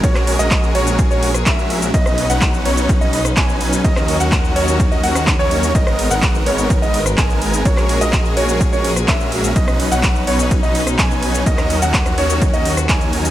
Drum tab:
RD |x-x-x-x-x-x-x-x-|x-x-x-x-x-x-x-x-|x-x-x-x-x-x-x-x-|x-x-x-x-x-x-x-x-|
HH |x-oxx-oxx-oxx-ox|x-oxx-oxx-oxx-ox|x-oxx-oxx-oxx-ox|x-oxx-oxx-oxx-ox|
SH |xx-xxx-xxx-xxx-x|xx-xxx-xxx-xxx-x|xx-xxx-xxx-xxx-x|xx-xxx-xxx-xxx-x|
CP |-x--x-------x---|----x-------x---|-x--x-------x---|----x-------x---|
SD |-r---------r----|-r---------r----|-r---------r----|-r---------r----|
BD |o---o---o---o---|o---o---o---o---|o---o---o---o---|o---o---o---o---|

RD |x-x-x-x-x-x-x-x-|x-x-x-x-x-x-x-x-|x-x-x-x-x-x-x-x-|
HH |x-oxx-oxx-oxx-ox|x-oxx-oxx-oxx-ox|xxoxxxoxxxoxxxox|
SH |xx-xxx-xxx-xxx-x|xx-xxx-xxx-xxx-x|xx-xxx-xxx-xxx-x|
CP |-x--x-------x---|----x-------x---|-x--x-------x---|
SD |-r---------r----|-r---------r----|-r---r-----r----|
BD |o---o---o---o---|o---o---o---o---|o---o---o---o---|